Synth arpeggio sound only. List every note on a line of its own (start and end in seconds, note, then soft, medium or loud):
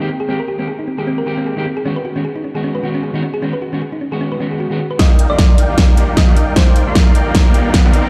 0.00 0.03 D#4 medium
0.09 0.15 C4 medium
0.20 0.23 G#4 loud
0.29 0.35 C4 loud
0.40 0.43 A#4 loud
0.48 0.57 G4 loud
0.59 0.64 C4 loud
0.68 0.74 G#4 medium
0.79 0.82 D#4 medium
0.88 0.94 C4 medium
0.98 1.01 G#4 loud
1.07 1.13 C4 loud
1.18 1.21 A#4 loud
1.27 1.36 G4 loud
1.38 1.43 C4 loud
1.46 1.52 G#4 medium
1.57 1.60 D#4 medium
1.66 1.72 C4 medium
1.77 1.80 G#4 loud
1.85 1.92 C#4 loud
1.96 1.99 B4 loud
2.05 2.14 F#4 loud
2.16 2.21 C#4 loud
2.25 2.31 G#4 medium
2.36 2.39 D#4 medium
2.44 2.50 C#4 medium
2.55 2.58 G#4 loud
2.64 2.70 C#4 loud
2.75 2.78 B4 loud
2.84 2.93 F#4 loud
2.94 2.99 C#4 loud
3.03 3.09 G#4 medium
3.14 3.17 D#4 medium
3.23 3.29 C#4 medium
3.34 3.37 G#4 loud
3.42 3.49 C#4 loud
3.53 3.56 B4 loud
3.62 3.71 F#4 loud
3.73 3.78 C#4 loud
3.82 3.88 G#4 medium
3.92 3.95 D#4 medium
4.01 4.07 C#4 medium
4.12 4.15 G#4 loud
4.21 4.27 C#4 loud
4.32 4.35 B4 loud
4.40 4.50 C#4 loud
4.51 4.56 G#4 medium
4.60 4.66 F#4 loud
4.71 4.76 G#4 medium
4.80 4.89 F#4 medium
4.91 4.98 B4 loud